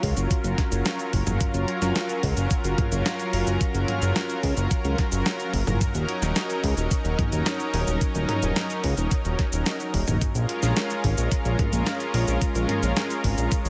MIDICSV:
0, 0, Header, 1, 4, 480
1, 0, Start_track
1, 0, Key_signature, -6, "minor"
1, 0, Tempo, 550459
1, 1226, Time_signature, 4, 2, 24, 8
1, 11939, End_track
2, 0, Start_track
2, 0, Title_t, "Analog synth pad"
2, 0, Program_c, 0, 89
2, 0, Note_on_c, 0, 54, 82
2, 0, Note_on_c, 0, 61, 73
2, 0, Note_on_c, 0, 65, 72
2, 0, Note_on_c, 0, 70, 86
2, 5031, Note_off_c, 0, 61, 0
2, 5031, Note_off_c, 0, 65, 0
2, 5068, Note_on_c, 0, 61, 76
2, 5068, Note_on_c, 0, 63, 74
2, 8871, Note_off_c, 0, 54, 0
2, 8871, Note_off_c, 0, 70, 0
2, 8872, Note_off_c, 0, 61, 0
2, 8872, Note_off_c, 0, 63, 0
2, 8908, Note_on_c, 0, 65, 74
2, 8909, Note_on_c, 0, 56, 81
2, 8909, Note_on_c, 0, 61, 72
2, 8909, Note_on_c, 0, 70, 89
2, 11939, Note_off_c, 0, 56, 0
2, 11939, Note_off_c, 0, 61, 0
2, 11939, Note_off_c, 0, 65, 0
2, 11939, Note_off_c, 0, 70, 0
2, 11939, End_track
3, 0, Start_track
3, 0, Title_t, "Analog synth bass"
3, 0, Program_c, 1, 38
3, 27, Note_on_c, 1, 37, 96
3, 122, Note_off_c, 1, 37, 0
3, 146, Note_on_c, 1, 30, 83
3, 241, Note_off_c, 1, 30, 0
3, 385, Note_on_c, 1, 30, 78
3, 481, Note_off_c, 1, 30, 0
3, 627, Note_on_c, 1, 30, 80
3, 721, Note_off_c, 1, 30, 0
3, 986, Note_on_c, 1, 30, 96
3, 1081, Note_off_c, 1, 30, 0
3, 1107, Note_on_c, 1, 30, 79
3, 1202, Note_off_c, 1, 30, 0
3, 1345, Note_on_c, 1, 30, 80
3, 1441, Note_off_c, 1, 30, 0
3, 1585, Note_on_c, 1, 30, 82
3, 1681, Note_off_c, 1, 30, 0
3, 1946, Note_on_c, 1, 37, 95
3, 2041, Note_off_c, 1, 37, 0
3, 2066, Note_on_c, 1, 30, 85
3, 2161, Note_off_c, 1, 30, 0
3, 2305, Note_on_c, 1, 30, 78
3, 2401, Note_off_c, 1, 30, 0
3, 2547, Note_on_c, 1, 30, 78
3, 2642, Note_off_c, 1, 30, 0
3, 2906, Note_on_c, 1, 30, 94
3, 3001, Note_off_c, 1, 30, 0
3, 3026, Note_on_c, 1, 30, 83
3, 3121, Note_off_c, 1, 30, 0
3, 3265, Note_on_c, 1, 30, 79
3, 3361, Note_off_c, 1, 30, 0
3, 3505, Note_on_c, 1, 30, 83
3, 3601, Note_off_c, 1, 30, 0
3, 3865, Note_on_c, 1, 37, 94
3, 3961, Note_off_c, 1, 37, 0
3, 3985, Note_on_c, 1, 30, 87
3, 4081, Note_off_c, 1, 30, 0
3, 4226, Note_on_c, 1, 37, 79
3, 4321, Note_off_c, 1, 37, 0
3, 4466, Note_on_c, 1, 30, 80
3, 4561, Note_off_c, 1, 30, 0
3, 4826, Note_on_c, 1, 30, 97
3, 4921, Note_off_c, 1, 30, 0
3, 4945, Note_on_c, 1, 30, 82
3, 5041, Note_off_c, 1, 30, 0
3, 5186, Note_on_c, 1, 27, 79
3, 5281, Note_off_c, 1, 27, 0
3, 5425, Note_on_c, 1, 27, 81
3, 5521, Note_off_c, 1, 27, 0
3, 5787, Note_on_c, 1, 37, 100
3, 5882, Note_off_c, 1, 37, 0
3, 5904, Note_on_c, 1, 27, 86
3, 6000, Note_off_c, 1, 27, 0
3, 6144, Note_on_c, 1, 27, 78
3, 6240, Note_off_c, 1, 27, 0
3, 6385, Note_on_c, 1, 27, 81
3, 6481, Note_off_c, 1, 27, 0
3, 6745, Note_on_c, 1, 27, 99
3, 6841, Note_off_c, 1, 27, 0
3, 6866, Note_on_c, 1, 27, 80
3, 6961, Note_off_c, 1, 27, 0
3, 7107, Note_on_c, 1, 27, 78
3, 7202, Note_off_c, 1, 27, 0
3, 7347, Note_on_c, 1, 27, 85
3, 7442, Note_off_c, 1, 27, 0
3, 7707, Note_on_c, 1, 37, 95
3, 7802, Note_off_c, 1, 37, 0
3, 7827, Note_on_c, 1, 27, 84
3, 7922, Note_off_c, 1, 27, 0
3, 8068, Note_on_c, 1, 27, 76
3, 8162, Note_off_c, 1, 27, 0
3, 8308, Note_on_c, 1, 27, 83
3, 8402, Note_off_c, 1, 27, 0
3, 8668, Note_on_c, 1, 27, 99
3, 8762, Note_off_c, 1, 27, 0
3, 8787, Note_on_c, 1, 27, 83
3, 8882, Note_off_c, 1, 27, 0
3, 9025, Note_on_c, 1, 34, 80
3, 9121, Note_off_c, 1, 34, 0
3, 9266, Note_on_c, 1, 34, 82
3, 9361, Note_off_c, 1, 34, 0
3, 9627, Note_on_c, 1, 32, 96
3, 9722, Note_off_c, 1, 32, 0
3, 9747, Note_on_c, 1, 34, 84
3, 9842, Note_off_c, 1, 34, 0
3, 9987, Note_on_c, 1, 34, 79
3, 10082, Note_off_c, 1, 34, 0
3, 10226, Note_on_c, 1, 34, 79
3, 10321, Note_off_c, 1, 34, 0
3, 10586, Note_on_c, 1, 34, 96
3, 10681, Note_off_c, 1, 34, 0
3, 10706, Note_on_c, 1, 34, 81
3, 10801, Note_off_c, 1, 34, 0
3, 10946, Note_on_c, 1, 34, 78
3, 11041, Note_off_c, 1, 34, 0
3, 11187, Note_on_c, 1, 34, 83
3, 11282, Note_off_c, 1, 34, 0
3, 11546, Note_on_c, 1, 32, 96
3, 11641, Note_off_c, 1, 32, 0
3, 11665, Note_on_c, 1, 34, 86
3, 11761, Note_off_c, 1, 34, 0
3, 11904, Note_on_c, 1, 32, 78
3, 11939, Note_off_c, 1, 32, 0
3, 11939, End_track
4, 0, Start_track
4, 0, Title_t, "Drums"
4, 27, Note_on_c, 9, 36, 65
4, 27, Note_on_c, 9, 46, 82
4, 114, Note_off_c, 9, 36, 0
4, 115, Note_off_c, 9, 46, 0
4, 147, Note_on_c, 9, 42, 42
4, 147, Note_on_c, 9, 82, 60
4, 235, Note_off_c, 9, 42, 0
4, 235, Note_off_c, 9, 82, 0
4, 266, Note_on_c, 9, 36, 127
4, 267, Note_on_c, 9, 42, 99
4, 267, Note_on_c, 9, 82, 49
4, 354, Note_off_c, 9, 36, 0
4, 354, Note_off_c, 9, 42, 0
4, 354, Note_off_c, 9, 82, 0
4, 387, Note_on_c, 9, 42, 42
4, 387, Note_on_c, 9, 82, 30
4, 474, Note_off_c, 9, 42, 0
4, 474, Note_off_c, 9, 82, 0
4, 507, Note_on_c, 9, 36, 113
4, 507, Note_on_c, 9, 38, 40
4, 507, Note_on_c, 9, 42, 73
4, 594, Note_off_c, 9, 36, 0
4, 594, Note_off_c, 9, 38, 0
4, 594, Note_off_c, 9, 42, 0
4, 627, Note_on_c, 9, 42, 42
4, 627, Note_on_c, 9, 82, 58
4, 714, Note_off_c, 9, 42, 0
4, 714, Note_off_c, 9, 82, 0
4, 747, Note_on_c, 9, 38, 126
4, 747, Note_on_c, 9, 42, 100
4, 747, Note_on_c, 9, 82, 49
4, 834, Note_off_c, 9, 38, 0
4, 834, Note_off_c, 9, 42, 0
4, 834, Note_off_c, 9, 82, 0
4, 867, Note_on_c, 9, 42, 42
4, 867, Note_on_c, 9, 82, 29
4, 954, Note_off_c, 9, 42, 0
4, 954, Note_off_c, 9, 82, 0
4, 986, Note_on_c, 9, 36, 67
4, 986, Note_on_c, 9, 46, 83
4, 1073, Note_off_c, 9, 46, 0
4, 1074, Note_off_c, 9, 36, 0
4, 1106, Note_on_c, 9, 45, 87
4, 1106, Note_on_c, 9, 82, 59
4, 1193, Note_off_c, 9, 45, 0
4, 1193, Note_off_c, 9, 82, 0
4, 1225, Note_on_c, 9, 42, 95
4, 1225, Note_on_c, 9, 82, 48
4, 1226, Note_on_c, 9, 36, 125
4, 1313, Note_off_c, 9, 36, 0
4, 1313, Note_off_c, 9, 42, 0
4, 1313, Note_off_c, 9, 82, 0
4, 1345, Note_on_c, 9, 42, 43
4, 1345, Note_on_c, 9, 82, 29
4, 1432, Note_off_c, 9, 42, 0
4, 1432, Note_off_c, 9, 82, 0
4, 1466, Note_on_c, 9, 42, 71
4, 1553, Note_off_c, 9, 42, 0
4, 1586, Note_on_c, 9, 38, 39
4, 1586, Note_on_c, 9, 42, 41
4, 1586, Note_on_c, 9, 82, 57
4, 1673, Note_off_c, 9, 38, 0
4, 1673, Note_off_c, 9, 42, 0
4, 1673, Note_off_c, 9, 82, 0
4, 1706, Note_on_c, 9, 38, 123
4, 1706, Note_on_c, 9, 42, 95
4, 1706, Note_on_c, 9, 82, 47
4, 1793, Note_off_c, 9, 38, 0
4, 1793, Note_off_c, 9, 42, 0
4, 1793, Note_off_c, 9, 82, 0
4, 1826, Note_on_c, 9, 42, 41
4, 1826, Note_on_c, 9, 82, 29
4, 1913, Note_off_c, 9, 42, 0
4, 1913, Note_off_c, 9, 82, 0
4, 1946, Note_on_c, 9, 36, 66
4, 1946, Note_on_c, 9, 46, 81
4, 2033, Note_off_c, 9, 36, 0
4, 2033, Note_off_c, 9, 46, 0
4, 2066, Note_on_c, 9, 42, 42
4, 2066, Note_on_c, 9, 82, 59
4, 2153, Note_off_c, 9, 42, 0
4, 2153, Note_off_c, 9, 82, 0
4, 2186, Note_on_c, 9, 36, 127
4, 2186, Note_on_c, 9, 42, 93
4, 2186, Note_on_c, 9, 82, 48
4, 2273, Note_off_c, 9, 36, 0
4, 2273, Note_off_c, 9, 42, 0
4, 2273, Note_off_c, 9, 82, 0
4, 2306, Note_on_c, 9, 42, 42
4, 2306, Note_on_c, 9, 82, 29
4, 2393, Note_off_c, 9, 42, 0
4, 2393, Note_off_c, 9, 82, 0
4, 2426, Note_on_c, 9, 36, 116
4, 2426, Note_on_c, 9, 42, 71
4, 2426, Note_on_c, 9, 45, 63
4, 2513, Note_off_c, 9, 36, 0
4, 2513, Note_off_c, 9, 42, 0
4, 2513, Note_off_c, 9, 45, 0
4, 2546, Note_on_c, 9, 42, 41
4, 2546, Note_on_c, 9, 82, 58
4, 2634, Note_off_c, 9, 42, 0
4, 2634, Note_off_c, 9, 82, 0
4, 2666, Note_on_c, 9, 38, 127
4, 2666, Note_on_c, 9, 42, 99
4, 2666, Note_on_c, 9, 82, 48
4, 2754, Note_off_c, 9, 38, 0
4, 2754, Note_off_c, 9, 42, 0
4, 2754, Note_off_c, 9, 82, 0
4, 2786, Note_on_c, 9, 42, 40
4, 2786, Note_on_c, 9, 82, 28
4, 2873, Note_off_c, 9, 42, 0
4, 2873, Note_off_c, 9, 82, 0
4, 2906, Note_on_c, 9, 46, 78
4, 2993, Note_off_c, 9, 46, 0
4, 3026, Note_on_c, 9, 82, 58
4, 3113, Note_off_c, 9, 82, 0
4, 3146, Note_on_c, 9, 36, 125
4, 3146, Note_on_c, 9, 42, 94
4, 3146, Note_on_c, 9, 82, 49
4, 3233, Note_off_c, 9, 36, 0
4, 3233, Note_off_c, 9, 42, 0
4, 3233, Note_off_c, 9, 82, 0
4, 3266, Note_on_c, 9, 42, 40
4, 3266, Note_on_c, 9, 82, 29
4, 3353, Note_off_c, 9, 42, 0
4, 3353, Note_off_c, 9, 82, 0
4, 3386, Note_on_c, 9, 42, 68
4, 3386, Note_on_c, 9, 45, 65
4, 3473, Note_off_c, 9, 42, 0
4, 3473, Note_off_c, 9, 45, 0
4, 3506, Note_on_c, 9, 42, 40
4, 3506, Note_on_c, 9, 82, 58
4, 3593, Note_off_c, 9, 42, 0
4, 3593, Note_off_c, 9, 82, 0
4, 3626, Note_on_c, 9, 38, 125
4, 3626, Note_on_c, 9, 42, 93
4, 3626, Note_on_c, 9, 82, 48
4, 3713, Note_off_c, 9, 38, 0
4, 3713, Note_off_c, 9, 42, 0
4, 3713, Note_off_c, 9, 82, 0
4, 3746, Note_on_c, 9, 42, 40
4, 3746, Note_on_c, 9, 82, 30
4, 3833, Note_off_c, 9, 42, 0
4, 3833, Note_off_c, 9, 82, 0
4, 3866, Note_on_c, 9, 36, 65
4, 3866, Note_on_c, 9, 46, 77
4, 3953, Note_off_c, 9, 36, 0
4, 3953, Note_off_c, 9, 46, 0
4, 3986, Note_on_c, 9, 42, 40
4, 3986, Note_on_c, 9, 82, 58
4, 4073, Note_off_c, 9, 42, 0
4, 4073, Note_off_c, 9, 82, 0
4, 4106, Note_on_c, 9, 36, 124
4, 4106, Note_on_c, 9, 42, 93
4, 4106, Note_on_c, 9, 82, 48
4, 4193, Note_off_c, 9, 36, 0
4, 4194, Note_off_c, 9, 42, 0
4, 4194, Note_off_c, 9, 82, 0
4, 4226, Note_on_c, 9, 42, 41
4, 4226, Note_on_c, 9, 82, 30
4, 4314, Note_off_c, 9, 42, 0
4, 4314, Note_off_c, 9, 82, 0
4, 4346, Note_on_c, 9, 36, 114
4, 4346, Note_on_c, 9, 38, 39
4, 4346, Note_on_c, 9, 42, 68
4, 4433, Note_off_c, 9, 38, 0
4, 4433, Note_off_c, 9, 42, 0
4, 4434, Note_off_c, 9, 36, 0
4, 4465, Note_on_c, 9, 42, 40
4, 4465, Note_on_c, 9, 82, 59
4, 4553, Note_off_c, 9, 42, 0
4, 4553, Note_off_c, 9, 82, 0
4, 4586, Note_on_c, 9, 38, 125
4, 4586, Note_on_c, 9, 42, 93
4, 4586, Note_on_c, 9, 82, 50
4, 4673, Note_off_c, 9, 38, 0
4, 4673, Note_off_c, 9, 42, 0
4, 4673, Note_off_c, 9, 82, 0
4, 4707, Note_on_c, 9, 42, 41
4, 4707, Note_on_c, 9, 82, 29
4, 4794, Note_off_c, 9, 42, 0
4, 4794, Note_off_c, 9, 82, 0
4, 4826, Note_on_c, 9, 36, 66
4, 4827, Note_on_c, 9, 46, 78
4, 4914, Note_off_c, 9, 36, 0
4, 4914, Note_off_c, 9, 46, 0
4, 4947, Note_on_c, 9, 45, 94
4, 4947, Note_on_c, 9, 82, 58
4, 5034, Note_off_c, 9, 45, 0
4, 5034, Note_off_c, 9, 82, 0
4, 5066, Note_on_c, 9, 36, 118
4, 5067, Note_on_c, 9, 42, 90
4, 5067, Note_on_c, 9, 82, 51
4, 5154, Note_off_c, 9, 36, 0
4, 5154, Note_off_c, 9, 42, 0
4, 5154, Note_off_c, 9, 82, 0
4, 5186, Note_on_c, 9, 42, 39
4, 5186, Note_on_c, 9, 82, 31
4, 5273, Note_off_c, 9, 42, 0
4, 5273, Note_off_c, 9, 82, 0
4, 5307, Note_on_c, 9, 42, 67
4, 5394, Note_off_c, 9, 42, 0
4, 5427, Note_on_c, 9, 38, 38
4, 5427, Note_on_c, 9, 42, 39
4, 5427, Note_on_c, 9, 82, 60
4, 5514, Note_off_c, 9, 38, 0
4, 5514, Note_off_c, 9, 42, 0
4, 5514, Note_off_c, 9, 82, 0
4, 5546, Note_on_c, 9, 38, 118
4, 5546, Note_on_c, 9, 42, 93
4, 5546, Note_on_c, 9, 82, 50
4, 5633, Note_off_c, 9, 38, 0
4, 5633, Note_off_c, 9, 42, 0
4, 5633, Note_off_c, 9, 82, 0
4, 5667, Note_on_c, 9, 42, 39
4, 5667, Note_on_c, 9, 82, 30
4, 5754, Note_off_c, 9, 42, 0
4, 5754, Note_off_c, 9, 82, 0
4, 5786, Note_on_c, 9, 36, 62
4, 5787, Note_on_c, 9, 46, 80
4, 5874, Note_off_c, 9, 36, 0
4, 5874, Note_off_c, 9, 46, 0
4, 5906, Note_on_c, 9, 42, 38
4, 5906, Note_on_c, 9, 82, 61
4, 5994, Note_off_c, 9, 42, 0
4, 5994, Note_off_c, 9, 82, 0
4, 6026, Note_on_c, 9, 36, 121
4, 6027, Note_on_c, 9, 42, 89
4, 6027, Note_on_c, 9, 82, 51
4, 6114, Note_off_c, 9, 36, 0
4, 6114, Note_off_c, 9, 42, 0
4, 6114, Note_off_c, 9, 82, 0
4, 6147, Note_on_c, 9, 42, 40
4, 6147, Note_on_c, 9, 82, 31
4, 6234, Note_off_c, 9, 42, 0
4, 6234, Note_off_c, 9, 82, 0
4, 6266, Note_on_c, 9, 36, 108
4, 6267, Note_on_c, 9, 42, 66
4, 6267, Note_on_c, 9, 45, 67
4, 6354, Note_off_c, 9, 36, 0
4, 6354, Note_off_c, 9, 42, 0
4, 6354, Note_off_c, 9, 45, 0
4, 6386, Note_on_c, 9, 42, 39
4, 6386, Note_on_c, 9, 82, 60
4, 6473, Note_off_c, 9, 42, 0
4, 6473, Note_off_c, 9, 82, 0
4, 6506, Note_on_c, 9, 38, 120
4, 6506, Note_on_c, 9, 42, 92
4, 6506, Note_on_c, 9, 82, 52
4, 6594, Note_off_c, 9, 38, 0
4, 6594, Note_off_c, 9, 42, 0
4, 6594, Note_off_c, 9, 82, 0
4, 6626, Note_on_c, 9, 42, 38
4, 6626, Note_on_c, 9, 82, 31
4, 6713, Note_off_c, 9, 42, 0
4, 6713, Note_off_c, 9, 82, 0
4, 6746, Note_on_c, 9, 46, 80
4, 6833, Note_off_c, 9, 46, 0
4, 6867, Note_on_c, 9, 82, 60
4, 6954, Note_off_c, 9, 82, 0
4, 6987, Note_on_c, 9, 36, 118
4, 6987, Note_on_c, 9, 42, 88
4, 6987, Note_on_c, 9, 82, 53
4, 7074, Note_off_c, 9, 36, 0
4, 7074, Note_off_c, 9, 42, 0
4, 7074, Note_off_c, 9, 82, 0
4, 7106, Note_on_c, 9, 42, 39
4, 7106, Note_on_c, 9, 82, 32
4, 7193, Note_off_c, 9, 42, 0
4, 7193, Note_off_c, 9, 82, 0
4, 7226, Note_on_c, 9, 42, 65
4, 7226, Note_on_c, 9, 45, 68
4, 7313, Note_off_c, 9, 42, 0
4, 7313, Note_off_c, 9, 45, 0
4, 7347, Note_on_c, 9, 42, 39
4, 7347, Note_on_c, 9, 82, 63
4, 7434, Note_off_c, 9, 42, 0
4, 7434, Note_off_c, 9, 82, 0
4, 7467, Note_on_c, 9, 38, 117
4, 7467, Note_on_c, 9, 42, 90
4, 7467, Note_on_c, 9, 82, 52
4, 7554, Note_off_c, 9, 38, 0
4, 7554, Note_off_c, 9, 42, 0
4, 7554, Note_off_c, 9, 82, 0
4, 7587, Note_on_c, 9, 42, 39
4, 7587, Note_on_c, 9, 82, 31
4, 7674, Note_off_c, 9, 42, 0
4, 7674, Note_off_c, 9, 82, 0
4, 7706, Note_on_c, 9, 46, 81
4, 7707, Note_on_c, 9, 36, 59
4, 7793, Note_off_c, 9, 46, 0
4, 7794, Note_off_c, 9, 36, 0
4, 7826, Note_on_c, 9, 42, 38
4, 7826, Note_on_c, 9, 82, 65
4, 7913, Note_off_c, 9, 42, 0
4, 7913, Note_off_c, 9, 82, 0
4, 7946, Note_on_c, 9, 42, 89
4, 7946, Note_on_c, 9, 82, 52
4, 7947, Note_on_c, 9, 36, 114
4, 8034, Note_off_c, 9, 36, 0
4, 8034, Note_off_c, 9, 42, 0
4, 8034, Note_off_c, 9, 82, 0
4, 8066, Note_on_c, 9, 42, 39
4, 8066, Note_on_c, 9, 82, 32
4, 8153, Note_off_c, 9, 42, 0
4, 8153, Note_off_c, 9, 82, 0
4, 8186, Note_on_c, 9, 38, 37
4, 8186, Note_on_c, 9, 42, 67
4, 8187, Note_on_c, 9, 36, 105
4, 8274, Note_off_c, 9, 36, 0
4, 8274, Note_off_c, 9, 38, 0
4, 8274, Note_off_c, 9, 42, 0
4, 8307, Note_on_c, 9, 42, 38
4, 8307, Note_on_c, 9, 82, 61
4, 8394, Note_off_c, 9, 42, 0
4, 8394, Note_off_c, 9, 82, 0
4, 8426, Note_on_c, 9, 38, 118
4, 8426, Note_on_c, 9, 42, 92
4, 8426, Note_on_c, 9, 82, 54
4, 8513, Note_off_c, 9, 38, 0
4, 8513, Note_off_c, 9, 42, 0
4, 8513, Note_off_c, 9, 82, 0
4, 8547, Note_on_c, 9, 42, 38
4, 8547, Note_on_c, 9, 82, 31
4, 8634, Note_off_c, 9, 42, 0
4, 8634, Note_off_c, 9, 82, 0
4, 8666, Note_on_c, 9, 46, 82
4, 8667, Note_on_c, 9, 36, 63
4, 8753, Note_off_c, 9, 46, 0
4, 8754, Note_off_c, 9, 36, 0
4, 8787, Note_on_c, 9, 45, 100
4, 8787, Note_on_c, 9, 82, 62
4, 8874, Note_off_c, 9, 45, 0
4, 8874, Note_off_c, 9, 82, 0
4, 8907, Note_on_c, 9, 36, 114
4, 8907, Note_on_c, 9, 42, 92
4, 8907, Note_on_c, 9, 82, 53
4, 8994, Note_off_c, 9, 36, 0
4, 8994, Note_off_c, 9, 42, 0
4, 8994, Note_off_c, 9, 82, 0
4, 9027, Note_on_c, 9, 42, 41
4, 9027, Note_on_c, 9, 82, 32
4, 9114, Note_off_c, 9, 42, 0
4, 9114, Note_off_c, 9, 82, 0
4, 9147, Note_on_c, 9, 42, 67
4, 9234, Note_off_c, 9, 42, 0
4, 9268, Note_on_c, 9, 38, 37
4, 9268, Note_on_c, 9, 42, 40
4, 9268, Note_on_c, 9, 82, 64
4, 9355, Note_off_c, 9, 38, 0
4, 9355, Note_off_c, 9, 42, 0
4, 9355, Note_off_c, 9, 82, 0
4, 9388, Note_on_c, 9, 38, 116
4, 9388, Note_on_c, 9, 42, 93
4, 9388, Note_on_c, 9, 82, 53
4, 9475, Note_off_c, 9, 38, 0
4, 9475, Note_off_c, 9, 42, 0
4, 9475, Note_off_c, 9, 82, 0
4, 9507, Note_on_c, 9, 42, 40
4, 9507, Note_on_c, 9, 82, 33
4, 9595, Note_off_c, 9, 42, 0
4, 9595, Note_off_c, 9, 82, 0
4, 9627, Note_on_c, 9, 36, 61
4, 9627, Note_on_c, 9, 46, 83
4, 9714, Note_off_c, 9, 36, 0
4, 9714, Note_off_c, 9, 46, 0
4, 9747, Note_on_c, 9, 42, 39
4, 9747, Note_on_c, 9, 82, 65
4, 9834, Note_off_c, 9, 42, 0
4, 9834, Note_off_c, 9, 82, 0
4, 9867, Note_on_c, 9, 36, 114
4, 9867, Note_on_c, 9, 42, 91
4, 9867, Note_on_c, 9, 82, 54
4, 9954, Note_off_c, 9, 36, 0
4, 9954, Note_off_c, 9, 42, 0
4, 9954, Note_off_c, 9, 82, 0
4, 9987, Note_on_c, 9, 42, 40
4, 9987, Note_on_c, 9, 82, 33
4, 10074, Note_off_c, 9, 42, 0
4, 10074, Note_off_c, 9, 82, 0
4, 10107, Note_on_c, 9, 36, 105
4, 10107, Note_on_c, 9, 42, 68
4, 10107, Note_on_c, 9, 45, 65
4, 10194, Note_off_c, 9, 36, 0
4, 10194, Note_off_c, 9, 42, 0
4, 10194, Note_off_c, 9, 45, 0
4, 10226, Note_on_c, 9, 42, 39
4, 10226, Note_on_c, 9, 82, 65
4, 10314, Note_off_c, 9, 42, 0
4, 10314, Note_off_c, 9, 82, 0
4, 10346, Note_on_c, 9, 38, 116
4, 10346, Note_on_c, 9, 42, 95
4, 10346, Note_on_c, 9, 82, 55
4, 10433, Note_off_c, 9, 38, 0
4, 10433, Note_off_c, 9, 42, 0
4, 10433, Note_off_c, 9, 82, 0
4, 10467, Note_on_c, 9, 42, 40
4, 10467, Note_on_c, 9, 82, 32
4, 10554, Note_off_c, 9, 42, 0
4, 10554, Note_off_c, 9, 82, 0
4, 10586, Note_on_c, 9, 46, 84
4, 10674, Note_off_c, 9, 46, 0
4, 10706, Note_on_c, 9, 82, 63
4, 10794, Note_off_c, 9, 82, 0
4, 10826, Note_on_c, 9, 36, 115
4, 10826, Note_on_c, 9, 42, 96
4, 10826, Note_on_c, 9, 82, 52
4, 10913, Note_off_c, 9, 36, 0
4, 10913, Note_off_c, 9, 42, 0
4, 10913, Note_off_c, 9, 82, 0
4, 10946, Note_on_c, 9, 42, 41
4, 10946, Note_on_c, 9, 82, 32
4, 11033, Note_off_c, 9, 42, 0
4, 11033, Note_off_c, 9, 82, 0
4, 11066, Note_on_c, 9, 42, 72
4, 11066, Note_on_c, 9, 45, 64
4, 11153, Note_off_c, 9, 42, 0
4, 11153, Note_off_c, 9, 45, 0
4, 11186, Note_on_c, 9, 42, 41
4, 11186, Note_on_c, 9, 82, 61
4, 11274, Note_off_c, 9, 42, 0
4, 11274, Note_off_c, 9, 82, 0
4, 11306, Note_on_c, 9, 38, 118
4, 11306, Note_on_c, 9, 42, 93
4, 11306, Note_on_c, 9, 82, 53
4, 11393, Note_off_c, 9, 38, 0
4, 11393, Note_off_c, 9, 42, 0
4, 11393, Note_off_c, 9, 82, 0
4, 11427, Note_on_c, 9, 42, 42
4, 11427, Note_on_c, 9, 82, 31
4, 11514, Note_off_c, 9, 42, 0
4, 11514, Note_off_c, 9, 82, 0
4, 11546, Note_on_c, 9, 36, 63
4, 11546, Note_on_c, 9, 46, 86
4, 11633, Note_off_c, 9, 36, 0
4, 11634, Note_off_c, 9, 46, 0
4, 11666, Note_on_c, 9, 42, 42
4, 11666, Note_on_c, 9, 82, 62
4, 11754, Note_off_c, 9, 42, 0
4, 11754, Note_off_c, 9, 82, 0
4, 11786, Note_on_c, 9, 36, 120
4, 11786, Note_on_c, 9, 42, 96
4, 11786, Note_on_c, 9, 82, 51
4, 11873, Note_off_c, 9, 36, 0
4, 11873, Note_off_c, 9, 42, 0
4, 11873, Note_off_c, 9, 82, 0
4, 11906, Note_on_c, 9, 42, 42
4, 11906, Note_on_c, 9, 82, 32
4, 11939, Note_off_c, 9, 42, 0
4, 11939, Note_off_c, 9, 82, 0
4, 11939, End_track
0, 0, End_of_file